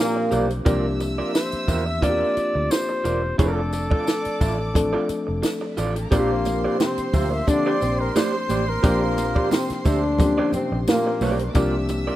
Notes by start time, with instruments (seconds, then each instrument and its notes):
Already playing: reed electric piano F3 A#3 C4 D4 G4, violin section C5 C6
0.00 trombone section A#2 A#3
0.16 muted clean electric guitar stroke
0.31 fingered electric bass B1, clean electric guitar G4 C5 D5, closed hi-hat, tambourine
0.50 muted clean electric guitar stroke, closed hi-hat
0.65 fingered electric bass C2, reed electric piano E3 A#3 C4 D4 G4, clean electric guitar F4 A#4 D5, violin section E5 E6, kick, closed hi-hat, tambourine
0.71 reed electric piano F3
1.00 muted clean electric guitar stroke, closed hi-hat, tambourine
1.18 clean electric guitar F4 A#4 D5
1.34 flugelhorn C5, muted clean electric guitar stroke, snare, closed hi-hat, tambourine
1.52 muted fingered electric bass stroke, closed hi-hat
1.68 fingered electric bass E2, clean electric guitar F4 A#4 E5, kick, closed hi-hat, tambourine
1.86 flugelhorn E5, muted clean electric guitar stroke
2.01 reed electric piano A#3 C4 D4 F4, clean electric guitar F4 A#4 D5, flugelhorn D5, kick, closed hi-hat
2.10 reed electric piano G4
2.37 muted clean electric guitar stroke, muted fingered electric bass stroke, closed hi-hat
2.55 fingered electric bass D2, muted clean electric guitar stroke
2.71 flugelhorn C5, muted clean electric guitar stroke, snare, closed hi-hat, tambourine
2.89 muted clean electric guitar stroke
3.04 fingered electric bass E1, clean electric guitar F4 A#4 D5, closed hi-hat, tambourine
3.23 muted clean electric guitar stroke
3.38 fingered electric bass F1, reed electric piano F3 A3 C4 D4 G#4, clean electric guitar F4 A4 D5, flugelhorn A4, violin section D5 D6, kick, closed hi-hat, tambourine
3.47 reed electric piano A4
3.73 muted clean electric guitar stroke, closed hi-hat, tambourine
3.91 clean electric guitar F4 A4 D5, kick
4.07 muted clean electric guitar stroke, snare, closed hi-hat, tambourine
4.25 muted fingered electric bass stroke, closed hi-hat
4.41 fingered electric bass A1, clean electric guitar F4 A4 E5, kick, closed hi-hat, tambourine
4.59 muted clean electric guitar stroke
4.74 reed electric piano F3 A3 C4 D4 A4, muted clean electric guitar stroke, kick, closed hi-hat
4.93 clean electric guitar F4 A4 D5
5.09 muted clean electric guitar stroke, muted fingered electric bass stroke, closed hi-hat, tambourine
5.27 fingered electric bass F1, muted clean electric guitar stroke
5.43 muted clean electric guitar stroke, snare, closed hi-hat, tambourine
5.61 violin section D4 D5, muted clean electric guitar stroke
5.70 violin section E4 E5
5.77 fingered electric bass A1, clean electric guitar F4 A4 D5, violin section F4 F5, closed hi-hat, tambourine
5.88 violin section G4 G5
5.96 violin section A4 A5, muted clean electric guitar stroke, closed hi-hat
6.05 violin section A#4 A#5
6.11 fingered electric bass A#1, trombone section A#2 A#3, reed electric piano F3 A#3 C4 D4 F4, clean electric guitar G4 C5 D5, violin section C5 C6, kick, closed hi-hat, tambourine, muted conga
6.19 reed electric piano G4
6.45 muted clean electric guitar stroke, closed hi-hat, tambourine, muted conga
6.64 clean electric guitar G4 C5 D5
6.79 trombone section C3 C4, flugelhorn C5, muted clean electric guitar stroke, snare, closed hi-hat, tambourine, high conga
6.98 muted fingered electric bass stroke, closed hi-hat
7.13 fingered electric bass D2, trombone section A#2 A#3, clean electric guitar G4 C5 E5, kick, open hi-hat, tambourine, muted conga, low conga
7.32 flugelhorn E5, muted clean electric guitar stroke
7.47 trombone section D3 D4, reed electric piano F3 A#3 C4 D4 G4, flugelhorn D5, muted clean electric guitar stroke, kick, closed hi-hat, tambourine, muted conga
7.66 clean electric guitar G4 C5 D5
7.81 fingered electric bass A#1, trombone section C3 C4, muted clean electric guitar stroke, closed hi-hat, tambourine
8.00 flugelhorn A#4, muted clean electric guitar stroke
8.16 clean electric guitar G4 C5 D5, flugelhorn C5, snare, closed hi-hat, tambourine, high conga
8.33 muted clean electric guitar stroke
8.49 fingered electric bass A1, clean electric guitar G4 C5 D5, closed hi-hat, tambourine, high conga
8.67 flugelhorn A#4, muted clean electric guitar stroke
8.83 fingered electric bass A#1, trombone section A#2 A#3, reed electric piano F3 A#3 C4 D4 G4, clean electric guitar G4 C5 D5, kick, closed hi-hat, tambourine
9.17 muted clean electric guitar stroke, closed hi-hat, tambourine, muted conga
9.36 clean electric guitar G4 C5 D5, kick
9.51 trombone section C3 C4, muted clean electric guitar stroke, snare, closed hi-hat, tambourine, high conga
9.70 muted fingered electric bass stroke, snare, closed hi-hat
9.85 fingered electric bass D2, trombone section D3 D4, clean electric guitar G4 C5 E5, kick, closed hi-hat, tambourine, muted conga
10.04 muted clean electric guitar stroke
10.18 reed electric piano F3 A#3 C4 C#4 G4, muted clean electric guitar stroke, kick, closed hi-hat, tambourine, muted conga, low conga
10.26 reed electric piano D4
10.38 clean electric guitar G4 C5 D5
10.52 trombone section C3 C4, muted clean electric guitar stroke, muted fingered electric bass stroke, closed hi-hat, tambourine, low conga
10.72 fingered electric bass A#1, muted clean electric guitar stroke
10.87 trombone section A#2 A#3, muted clean electric guitar stroke, snare, closed hi-hat, tambourine, high conga
11.07 muted clean electric guitar stroke
11.21 fingered electric bass B1, clean electric guitar G4 C5 D5, violin section A4 A5, open hi-hat, tambourine, high conga
11.31 violin section A#4 A#5
11.39 violin section C5 C6, muted clean electric guitar stroke, closed hi-hat
11.48 violin section D5 D6
11.54 fingered electric bass C2, reed electric piano F3 A#3 C4 D4 G4, clean electric guitar F4 A#4 D5, violin section E5 E6, kick, closed hi-hat, tambourine, muted conga
11.89 muted clean electric guitar stroke, closed hi-hat, tambourine, muted conga
12.07 clean electric guitar F4 A#4 D5